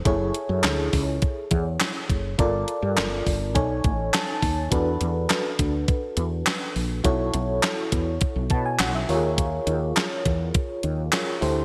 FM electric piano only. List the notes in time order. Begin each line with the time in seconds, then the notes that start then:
0.05 E4 G#4 A4 C#5
2.38 F4 A4 A#4 D5
3.54 D#4 A4 C#5 G#5
4.13 A5
4.71 D4 F#4 A4 B4
7.04 E4 F#4 A4 C#5
8.51 A5
8.66 G#5
8.80 F#5
8.95 E5
9.09 F4 G4 A#4 C#5
9.16 G#4
11.13 F4 G#4 A#4 C#5
11.41 E4 G4 A4 C5